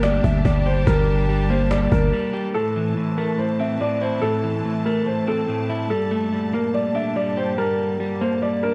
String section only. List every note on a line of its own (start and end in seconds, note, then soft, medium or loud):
0.00 2.51 G3 medium
0.00 2.51 D4 medium
0.00 2.51 G4 medium
0.00 2.51 A5 medium
2.55 5.87 A2 medium
2.55 5.87 E3 medium
2.55 5.87 C4 medium
2.55 8.74 A5 medium
5.91 8.74 G2 medium
5.91 8.74 A#2 medium
5.91 8.74 D3 medium